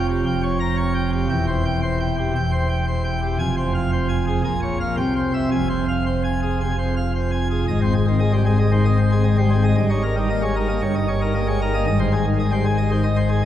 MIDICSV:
0, 0, Header, 1, 2, 480
1, 0, Start_track
1, 0, Key_signature, -4, "minor"
1, 0, Tempo, 521739
1, 1195, Time_signature, 4, 2, 24, 8
1, 4084, Tempo, 538117
1, 6964, Key_signature, -4, "major"
1, 6964, Tempo, 524934
1, 12252, End_track
2, 0, Start_track
2, 0, Title_t, "Pipe organ"
2, 0, Program_c, 0, 19
2, 0, Note_on_c, 0, 29, 85
2, 0, Note_on_c, 0, 41, 74
2, 81, Note_on_c, 0, 67, 62
2, 217, Note_off_c, 0, 29, 0
2, 217, Note_off_c, 0, 41, 0
2, 223, Note_off_c, 0, 67, 0
2, 236, Note_on_c, 0, 29, 65
2, 236, Note_on_c, 0, 41, 64
2, 237, Note_on_c, 0, 79, 79
2, 380, Note_off_c, 0, 79, 0
2, 395, Note_on_c, 0, 73, 70
2, 538, Note_off_c, 0, 73, 0
2, 552, Note_on_c, 0, 82, 74
2, 696, Note_off_c, 0, 82, 0
2, 709, Note_on_c, 0, 73, 71
2, 854, Note_off_c, 0, 73, 0
2, 869, Note_on_c, 0, 79, 69
2, 1014, Note_off_c, 0, 79, 0
2, 1035, Note_on_c, 0, 67, 64
2, 1163, Note_off_c, 0, 29, 0
2, 1163, Note_off_c, 0, 41, 0
2, 1171, Note_off_c, 0, 67, 0
2, 1190, Note_on_c, 0, 79, 90
2, 1191, Note_on_c, 0, 40, 83
2, 1195, Note_on_c, 0, 28, 82
2, 1335, Note_off_c, 0, 79, 0
2, 1357, Note_on_c, 0, 72, 73
2, 1499, Note_off_c, 0, 72, 0
2, 1517, Note_on_c, 0, 79, 65
2, 1659, Note_off_c, 0, 79, 0
2, 1677, Note_on_c, 0, 72, 77
2, 1820, Note_off_c, 0, 72, 0
2, 1839, Note_on_c, 0, 79, 66
2, 1981, Note_off_c, 0, 79, 0
2, 2002, Note_on_c, 0, 67, 67
2, 2143, Note_off_c, 0, 28, 0
2, 2143, Note_off_c, 0, 67, 0
2, 2146, Note_off_c, 0, 40, 0
2, 2161, Note_on_c, 0, 28, 64
2, 2164, Note_on_c, 0, 40, 65
2, 2166, Note_on_c, 0, 79, 71
2, 2305, Note_off_c, 0, 79, 0
2, 2317, Note_on_c, 0, 72, 72
2, 2460, Note_off_c, 0, 72, 0
2, 2477, Note_on_c, 0, 79, 71
2, 2620, Note_off_c, 0, 79, 0
2, 2644, Note_on_c, 0, 72, 68
2, 2784, Note_off_c, 0, 72, 0
2, 2798, Note_on_c, 0, 79, 64
2, 2941, Note_off_c, 0, 79, 0
2, 2959, Note_on_c, 0, 67, 66
2, 3091, Note_off_c, 0, 28, 0
2, 3093, Note_off_c, 0, 40, 0
2, 3095, Note_off_c, 0, 67, 0
2, 3119, Note_on_c, 0, 29, 76
2, 3120, Note_on_c, 0, 80, 93
2, 3123, Note_on_c, 0, 41, 78
2, 3263, Note_off_c, 0, 80, 0
2, 3284, Note_on_c, 0, 72, 61
2, 3425, Note_off_c, 0, 72, 0
2, 3444, Note_on_c, 0, 77, 70
2, 3586, Note_off_c, 0, 77, 0
2, 3605, Note_on_c, 0, 72, 72
2, 3747, Note_off_c, 0, 72, 0
2, 3763, Note_on_c, 0, 80, 64
2, 3906, Note_off_c, 0, 80, 0
2, 3927, Note_on_c, 0, 68, 59
2, 4056, Note_off_c, 0, 29, 0
2, 4057, Note_off_c, 0, 41, 0
2, 4062, Note_off_c, 0, 68, 0
2, 4088, Note_on_c, 0, 80, 81
2, 4089, Note_on_c, 0, 46, 69
2, 4093, Note_on_c, 0, 34, 77
2, 4226, Note_off_c, 0, 80, 0
2, 4248, Note_on_c, 0, 73, 67
2, 4386, Note_off_c, 0, 73, 0
2, 4409, Note_on_c, 0, 77, 66
2, 4540, Note_off_c, 0, 77, 0
2, 4545, Note_off_c, 0, 46, 0
2, 4548, Note_off_c, 0, 34, 0
2, 4561, Note_on_c, 0, 79, 79
2, 4563, Note_on_c, 0, 36, 67
2, 4564, Note_on_c, 0, 48, 74
2, 4702, Note_off_c, 0, 79, 0
2, 4729, Note_on_c, 0, 72, 56
2, 4868, Note_off_c, 0, 72, 0
2, 4886, Note_on_c, 0, 76, 56
2, 5021, Note_off_c, 0, 76, 0
2, 5029, Note_off_c, 0, 36, 0
2, 5030, Note_off_c, 0, 48, 0
2, 5046, Note_on_c, 0, 29, 61
2, 5046, Note_on_c, 0, 41, 75
2, 5046, Note_on_c, 0, 80, 81
2, 5189, Note_off_c, 0, 80, 0
2, 5205, Note_on_c, 0, 72, 62
2, 5349, Note_off_c, 0, 72, 0
2, 5369, Note_on_c, 0, 77, 58
2, 5511, Note_off_c, 0, 77, 0
2, 5532, Note_on_c, 0, 72, 59
2, 5673, Note_off_c, 0, 72, 0
2, 5692, Note_on_c, 0, 80, 63
2, 5832, Note_off_c, 0, 80, 0
2, 5853, Note_on_c, 0, 68, 53
2, 5993, Note_off_c, 0, 68, 0
2, 6017, Note_on_c, 0, 80, 56
2, 6019, Note_on_c, 0, 48, 52
2, 6120, Note_off_c, 0, 48, 0
2, 6155, Note_off_c, 0, 80, 0
2, 6174, Note_on_c, 0, 72, 56
2, 6314, Note_off_c, 0, 72, 0
2, 6337, Note_on_c, 0, 77, 60
2, 6475, Note_off_c, 0, 77, 0
2, 6504, Note_on_c, 0, 72, 53
2, 6639, Note_off_c, 0, 72, 0
2, 6652, Note_on_c, 0, 80, 62
2, 6792, Note_off_c, 0, 80, 0
2, 6816, Note_on_c, 0, 68, 54
2, 6931, Note_off_c, 0, 29, 0
2, 6931, Note_off_c, 0, 41, 0
2, 6946, Note_off_c, 0, 68, 0
2, 6969, Note_on_c, 0, 32, 64
2, 6973, Note_on_c, 0, 44, 67
2, 6973, Note_on_c, 0, 75, 83
2, 7077, Note_off_c, 0, 75, 0
2, 7099, Note_on_c, 0, 60, 59
2, 7099, Note_on_c, 0, 72, 66
2, 7201, Note_off_c, 0, 60, 0
2, 7201, Note_off_c, 0, 72, 0
2, 7213, Note_on_c, 0, 68, 53
2, 7318, Note_off_c, 0, 68, 0
2, 7337, Note_on_c, 0, 51, 51
2, 7339, Note_on_c, 0, 60, 54
2, 7441, Note_off_c, 0, 51, 0
2, 7441, Note_off_c, 0, 60, 0
2, 7449, Note_on_c, 0, 75, 69
2, 7450, Note_on_c, 0, 56, 60
2, 7556, Note_off_c, 0, 75, 0
2, 7557, Note_off_c, 0, 56, 0
2, 7568, Note_on_c, 0, 55, 47
2, 7569, Note_on_c, 0, 72, 53
2, 7670, Note_off_c, 0, 55, 0
2, 7676, Note_off_c, 0, 72, 0
2, 7687, Note_on_c, 0, 68, 59
2, 7688, Note_on_c, 0, 60, 50
2, 7794, Note_off_c, 0, 68, 0
2, 7795, Note_off_c, 0, 60, 0
2, 7808, Note_on_c, 0, 75, 58
2, 7811, Note_on_c, 0, 56, 56
2, 7915, Note_off_c, 0, 75, 0
2, 7917, Note_off_c, 0, 56, 0
2, 7926, Note_on_c, 0, 72, 56
2, 7927, Note_on_c, 0, 51, 47
2, 8034, Note_off_c, 0, 72, 0
2, 8035, Note_off_c, 0, 51, 0
2, 8046, Note_on_c, 0, 60, 57
2, 8046, Note_on_c, 0, 75, 65
2, 8154, Note_off_c, 0, 60, 0
2, 8155, Note_off_c, 0, 75, 0
2, 8168, Note_on_c, 0, 72, 61
2, 8276, Note_off_c, 0, 72, 0
2, 8290, Note_on_c, 0, 60, 52
2, 8291, Note_on_c, 0, 68, 54
2, 8397, Note_off_c, 0, 60, 0
2, 8398, Note_off_c, 0, 68, 0
2, 8406, Note_on_c, 0, 56, 61
2, 8406, Note_on_c, 0, 75, 56
2, 8515, Note_off_c, 0, 56, 0
2, 8515, Note_off_c, 0, 75, 0
2, 8527, Note_on_c, 0, 55, 52
2, 8529, Note_on_c, 0, 72, 58
2, 8630, Note_off_c, 0, 55, 0
2, 8636, Note_off_c, 0, 72, 0
2, 8648, Note_on_c, 0, 60, 58
2, 8648, Note_on_c, 0, 68, 58
2, 8756, Note_off_c, 0, 60, 0
2, 8756, Note_off_c, 0, 68, 0
2, 8767, Note_on_c, 0, 75, 62
2, 8769, Note_on_c, 0, 56, 58
2, 8855, Note_off_c, 0, 32, 0
2, 8857, Note_off_c, 0, 44, 0
2, 8870, Note_off_c, 0, 75, 0
2, 8871, Note_off_c, 0, 56, 0
2, 8890, Note_on_c, 0, 43, 73
2, 8891, Note_on_c, 0, 31, 66
2, 8891, Note_on_c, 0, 75, 81
2, 8998, Note_off_c, 0, 75, 0
2, 9007, Note_on_c, 0, 73, 65
2, 9008, Note_on_c, 0, 63, 63
2, 9116, Note_off_c, 0, 63, 0
2, 9116, Note_off_c, 0, 73, 0
2, 9125, Note_on_c, 0, 70, 57
2, 9235, Note_off_c, 0, 70, 0
2, 9246, Note_on_c, 0, 55, 59
2, 9250, Note_on_c, 0, 63, 52
2, 9356, Note_off_c, 0, 55, 0
2, 9358, Note_off_c, 0, 63, 0
2, 9367, Note_on_c, 0, 75, 68
2, 9369, Note_on_c, 0, 58, 59
2, 9477, Note_off_c, 0, 58, 0
2, 9477, Note_off_c, 0, 75, 0
2, 9484, Note_on_c, 0, 56, 49
2, 9485, Note_on_c, 0, 73, 63
2, 9590, Note_off_c, 0, 56, 0
2, 9595, Note_off_c, 0, 73, 0
2, 9607, Note_on_c, 0, 70, 53
2, 9611, Note_on_c, 0, 63, 60
2, 9717, Note_off_c, 0, 70, 0
2, 9719, Note_off_c, 0, 63, 0
2, 9726, Note_on_c, 0, 58, 59
2, 9727, Note_on_c, 0, 75, 67
2, 9829, Note_off_c, 0, 31, 0
2, 9830, Note_off_c, 0, 43, 0
2, 9836, Note_off_c, 0, 58, 0
2, 9837, Note_off_c, 0, 75, 0
2, 9844, Note_on_c, 0, 73, 69
2, 9847, Note_on_c, 0, 31, 60
2, 9848, Note_on_c, 0, 43, 66
2, 9955, Note_off_c, 0, 73, 0
2, 9969, Note_on_c, 0, 63, 55
2, 9969, Note_on_c, 0, 75, 63
2, 10078, Note_off_c, 0, 63, 0
2, 10078, Note_off_c, 0, 75, 0
2, 10086, Note_on_c, 0, 73, 70
2, 10196, Note_off_c, 0, 73, 0
2, 10208, Note_on_c, 0, 63, 55
2, 10208, Note_on_c, 0, 70, 62
2, 10318, Note_off_c, 0, 63, 0
2, 10318, Note_off_c, 0, 70, 0
2, 10326, Note_on_c, 0, 75, 67
2, 10329, Note_on_c, 0, 58, 62
2, 10437, Note_off_c, 0, 75, 0
2, 10438, Note_off_c, 0, 58, 0
2, 10447, Note_on_c, 0, 73, 64
2, 10448, Note_on_c, 0, 56, 54
2, 10553, Note_off_c, 0, 56, 0
2, 10557, Note_off_c, 0, 73, 0
2, 10572, Note_on_c, 0, 63, 64
2, 10575, Note_on_c, 0, 70, 63
2, 10680, Note_off_c, 0, 63, 0
2, 10682, Note_off_c, 0, 70, 0
2, 10689, Note_on_c, 0, 58, 65
2, 10690, Note_on_c, 0, 75, 61
2, 10782, Note_off_c, 0, 31, 0
2, 10782, Note_off_c, 0, 43, 0
2, 10787, Note_off_c, 0, 75, 0
2, 10793, Note_off_c, 0, 58, 0
2, 10803, Note_on_c, 0, 32, 82
2, 10805, Note_on_c, 0, 44, 76
2, 10805, Note_on_c, 0, 75, 95
2, 10915, Note_off_c, 0, 75, 0
2, 10922, Note_on_c, 0, 72, 69
2, 11033, Note_off_c, 0, 72, 0
2, 11040, Note_on_c, 0, 68, 67
2, 11152, Note_off_c, 0, 68, 0
2, 11166, Note_on_c, 0, 51, 61
2, 11274, Note_off_c, 0, 51, 0
2, 11282, Note_on_c, 0, 56, 76
2, 11284, Note_on_c, 0, 75, 77
2, 11392, Note_off_c, 0, 56, 0
2, 11393, Note_off_c, 0, 75, 0
2, 11399, Note_on_c, 0, 55, 56
2, 11402, Note_on_c, 0, 72, 67
2, 11504, Note_off_c, 0, 55, 0
2, 11511, Note_off_c, 0, 72, 0
2, 11522, Note_on_c, 0, 68, 61
2, 11630, Note_off_c, 0, 68, 0
2, 11636, Note_on_c, 0, 75, 67
2, 11639, Note_on_c, 0, 56, 61
2, 11746, Note_off_c, 0, 75, 0
2, 11748, Note_off_c, 0, 56, 0
2, 11753, Note_on_c, 0, 51, 61
2, 11759, Note_on_c, 0, 72, 62
2, 11865, Note_off_c, 0, 51, 0
2, 11868, Note_off_c, 0, 72, 0
2, 11871, Note_on_c, 0, 75, 70
2, 11984, Note_off_c, 0, 75, 0
2, 11990, Note_on_c, 0, 72, 79
2, 12103, Note_off_c, 0, 72, 0
2, 12107, Note_on_c, 0, 68, 68
2, 12220, Note_off_c, 0, 68, 0
2, 12252, Note_off_c, 0, 32, 0
2, 12252, Note_off_c, 0, 44, 0
2, 12252, End_track
0, 0, End_of_file